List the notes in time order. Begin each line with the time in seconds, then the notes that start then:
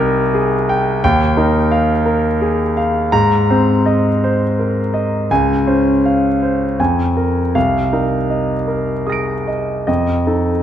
Already playing: C2 D#4 A#4 G5 G#5
0.34 G#4
0.69 G5
1.04 D#2 G5
1.37 D#4 A#4
1.72 F5
2.06 A#4
2.41 G#4
2.77 F5
3.12 G#2 A#5
3.50 C4 C5
3.86 D#5
4.24 C5
4.59 A#4
4.94 D#5
5.31 C#2 G#5
5.67 C#4 C5
6.05 F5
6.43 C5
6.80 F2 G#5
7.17 A#4
7.55 C2 F5
7.93 D#4 A#4
8.30 D#5
8.68 A#4
9.07 G#4 D#6 A#6
9.12 D7
9.48 D#5
9.87 F2 D#5
10.27 D#4 A4